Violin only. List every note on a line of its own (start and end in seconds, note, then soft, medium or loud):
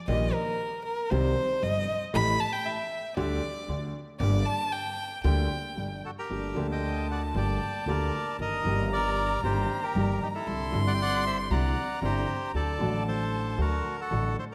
0.08 0.35 D#5 medium
0.33 0.85 A#4 loud
0.85 1.12 A#4 medium
1.11 1.64 C5 loud
1.63 2.01 D#5 loud
2.15 2.42 B5 loud
2.40 2.54 A5 loud
2.53 2.68 G5 loud
2.66 3.17 E5 loud
3.17 3.91 D5 loud
4.20 4.48 D5 loud
4.46 4.74 A5 loud
4.72 5.23 G5 loud
5.24 6.00 G5 medium
6.30 8.41 A5 medium
8.39 10.49 A#5 medium
10.47 11.52 C6 loud
11.51 12.47 A#5 medium
12.48 12.56 A#5 medium
12.55 14.38 A5 medium